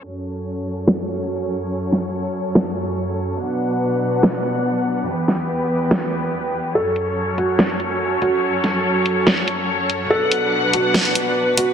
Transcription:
<<
  \new Staff \with { instrumentName = "Felt piano" } { \time 4/4 \key fis \phrygian \tempo 4 = 143 r1 | r1 | r1 | r1 |
a'4. fis'2 fis'8~ | fis'1 | a'4. fis'2 fis'8 | }
  \new Staff \with { instrumentName = "String section" } { \time 4/4 \key fis \phrygian << { <fis, cis' a' cis''>1~ | <fis, cis' a' cis''>1 | <b, d' b' fis''>1 | <e, b g' b'>1 |
<fis, cis' a' cis''>1~ | <fis, cis' a' cis''>1 | <b, d' b' fis''>1 | } \\ { fis1~ | fis1 | fis1 | e1 |
fis1~ | fis1~ | fis1 | } >> }
  \new DrumStaff \with { instrumentName = "Drums" } \drummode { \time 4/4 r4 r4 sn4 r4 | r8 sn8 r4 sn4 r4 | r4 r4 sn4 r4 | r8 sn8 r4 sn4 r4 |
r8 hh8 r8 hh8 sn16 hh16 hh8 r8 hh8 | r8 <hh sn>8 r8 hh8 sn16 hh16 hh8 r8 hh8 | r8 hh8 r8 hh8 sn16 hh16 hh8 r8 hh8 | }
>>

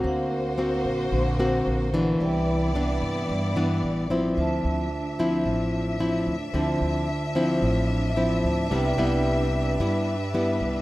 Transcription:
<<
  \new Staff \with { instrumentName = "Vibraphone" } { \time 4/4 \key d \dorian \tempo 4 = 111 << { r1 | r1 | r1 | r2. e''8 a''8 |
r1 | } \\ { <ais' c'' eis'' fis''>1 | <b' d'' e'' g''>1 | <f' c'' e'' a''>1 | <f' c'' e'' a''>1 |
<b' d'' e'' g''>1 | } >> }
  \new Staff \with { instrumentName = "String section" } { \time 4/4 \key d \dorian << { <ais c''>1 | <b d''>1 | <d' e''>1~ | <d' e''>1~ |
<d' e''>1 | } \\ { fis'1 | e'1 | r1 | r1 |
b'1 | } >> }
  \new Staff \with { instrumentName = "Nylon-string guitar" } { \time 4/4 \key d \dorian << { <bes c' fis'>4 <ais c' fis'>4. <ais c' fis'>4 <e b d'>8~ | <e b d'>4 <e b d'>4. <e b d'>4 <f c' e'>8~ | <f c' e'>4 r8 <f c' e'>4. <f c' e'>8 r8 | <f c' e'>4 r8 <f c' e'>4. <f c' e'>4 |
<g b e'>8 <g b e'>4. <g b e'>8 r8 <g b e'>4 | } \\ { d2 d2 | c2 g,2 | d2 a,2 | d2 a,2 |
c2 g,2 | } >> }
  \new Staff \with { instrumentName = "Upright bass" } { \clef bass \time 4/4 \key d \dorian d,4. ais,,8 ais,,4 ais,,4 | c,4. g,8 g,4 a,,4 | d,8 d,4. a,,4. d,8 | d,8 d,4. a,,4. d,8 |
c,8 c,4. g,4. c,8 | }
>>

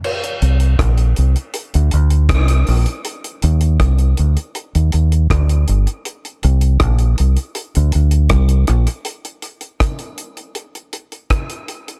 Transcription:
<<
  \new Staff \with { instrumentName = "Fingered electric bass" } { \clef bass \time 4/4 \key bes \mixolydian \tempo 4 = 80 r8 c,8 bes,,8 c,16 r8 d,16 d,8 c,8 bes,,16 r16 | r8 ees,8 c,8 d,16 r8 ees,16 ees,8 d,8 g,,16 r16 | r8 c,8 bes,,8 c,16 r8 d,16 d,8 c,8 bes,,16 r16 | r1 | }
  \new DrumStaff \with { instrumentName = "Drums" } \drummode { \time 4/4 cymc16 hh16 hh16 hh16 <hh bd ss>16 hh16 hh16 hh16 hh16 hh16 hh16 hh16 <hh bd ss>16 hh16 hho16 hh16 | hh16 hh16 hh16 hh16 <hh bd ss>16 hh16 hh16 hh16 hh16 hh16 hh16 hh16 <hh bd ss>16 hh16 hh16 hh16 | hh16 hh16 hh16 hh16 <hh bd ss>16 hh16 hh16 hh16 hh16 hh16 hh16 hh16 <hh bd ss>16 hh16 <hh ss>16 hh16 | hh16 hh16 hh16 hh16 <hh bd ss>16 hh16 hh16 hh16 hh16 hh16 hh16 hh16 <hh bd ss>16 hh16 hh16 hh16 | }
>>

